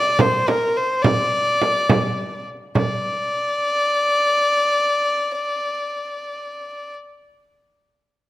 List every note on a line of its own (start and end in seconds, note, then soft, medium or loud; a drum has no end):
0.00 0.22 D5 medium
0.19 0.50 C5 medium
0.19 frame drum loud
0.48 0.78 A#4 medium
0.48 frame drum medium
0.76 1.04 C5 medium
1.02 2.46 D5 loud
1.02 frame drum medium
1.62 frame drum medium
1.89 frame drum loud
2.75 6.94 D5 medium
2.75 frame drum medium